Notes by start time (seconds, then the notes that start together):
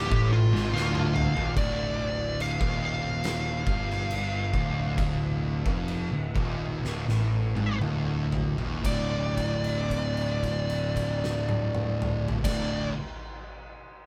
Already playing: D1 D2 G4
0.11 A1 A2, kick
0.32 F4
0.54 G#1 G#2, snare
0.73 D1 D2 F5, snare
0.95 high tom
1.16 mid tom
1.36 D#1 D#2, floor tom
1.56 D1 D2 D5, kick, crash
2.40 F5, crash
2.60 D#1 D#2, kick
2.85 F5
3.24 snare, crash
3.66 G1 G2, kick
3.90 snare
4.10 crash
4.53 D1 D2, kick
4.98 kick, crash
5.66 F1 F2, kick
5.88 crash
6.12 D1 D2
6.36 D#1 D#2, kick
6.84 D1 D2, snare
7.07 A1 A2, snare
7.55 G#1 G#2, high tom
7.80 D1 D2, mid tom
8.32 floor tom
8.58 D#1 D#2, floor tom
8.82 D1 D2 A2 D5, kick, crash
8.86 D3
9.37 kick, crash
9.64 crash
9.90 kick, crash
10.17 crash
10.43 kick, crash
10.70 crash
10.96 kick, crash
11.24 snare
11.49 high tom
11.75 mid tom
12.02 mid tom
12.28 floor tom
12.43 D1 D2 A2 D5, kick, snare, crash
12.47 D3